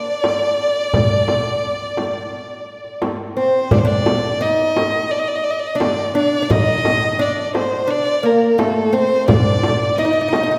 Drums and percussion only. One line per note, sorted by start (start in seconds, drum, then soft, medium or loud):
0.24 darbuka tek medium
0.24 frame drum medium
0.59 darbuka ka soft
0.94 darbuka dum medium
0.94 frame drum medium
1.28 darbuka tek medium
1.28 frame drum medium
1.97 darbuka tek medium
1.97 frame drum medium
2.32 darbuka ka soft
2.84 darbuka ka soft
3.02 darbuka tek medium
3.02 frame drum medium
3.37 darbuka ka soft
3.71 darbuka dum medium
3.71 frame drum medium
4.06 darbuka tek medium
4.06 frame drum medium
4.59 darbuka ka soft
4.76 darbuka tek medium
4.76 frame drum medium
5.80 darbuka tek medium
5.80 frame drum medium
6.50 frame drum loud
6.50 darbuka dum medium
6.85 darbuka tek medium
6.85 frame drum medium
7.38 darbuka ka soft
7.55 darbuka tek medium
7.55 frame drum medium
8.59 darbuka tek medium
8.59 frame drum medium
9.28 frame drum loud
9.28 darbuka dum loud
9.63 darbuka tek medium
9.63 frame drum medium
10.16 darbuka ka soft
10.33 darbuka tek medium
10.33 frame drum medium